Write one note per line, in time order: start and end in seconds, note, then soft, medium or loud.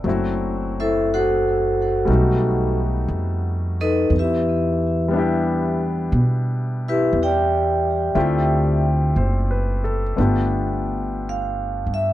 0.04 2.03 F#1 medium
0.04 2.07 F#3 medium
0.04 2.05 A3 soft
0.04 2.09 C4 medium
0.04 2.09 E4 soft
0.09 2.09 F#4 medium
0.80 1.09 E4 medium
0.80 1.09 A4 medium
0.80 1.09 C5 medium
0.80 1.09 E5 medium
1.14 2.76 F#4 medium
1.14 2.76 A4 medium
1.14 2.08 C5 medium
1.14 2.76 F#5 medium
2.05 3.05 B1 medium
2.05 4.09 G3 soft
2.05 4.10 A3 soft
2.05 4.10 B3 soft
2.05 4.11 D#4 soft
2.11 4.12 F#4 medium
3.08 4.06 F2 medium
3.81 4.12 D#4 medium
3.81 4.11 A4 medium
3.81 4.11 B4 medium
3.81 4.11 D#5 medium
4.10 6.09 E2 medium
4.18 5.81 E4 soft
4.18 5.80 G4 soft
4.18 5.80 B4 soft
4.18 5.80 E5 medium
5.08 8.13 G3 medium
5.08 8.15 B3 medium
5.13 8.16 D4 medium
5.13 8.14 E4 soft
5.18 8.15 G4 medium
6.12 7.10 B2 medium
6.88 7.17 E4 medium
6.88 7.18 G4 medium
6.88 7.17 B4 medium
6.88 7.17 E5 medium
7.13 8.10 E2 medium
7.23 8.84 G4 medium
7.23 8.84 D5 medium
7.23 8.84 E5 medium
7.23 8.84 G5 medium
8.15 9.12 D2 medium
8.15 10.15 A3 medium
8.15 10.17 C4 medium
8.15 10.17 E4 medium
8.15 10.18 F4 medium
8.15 10.18 G4 medium
9.16 10.13 F#1 medium
9.16 9.81 C5 soft
9.51 10.03 B4 soft
9.84 10.37 A4 soft
10.16 11.83 G1 medium
10.16 12.13 A3 soft
10.16 12.13 B3 soft
10.16 12.13 D4 soft
10.16 12.13 F4 soft
10.20 12.13 G4 medium
11.29 11.90 F5 medium
11.86 12.13 G2 medium
11.94 12.13 E5 medium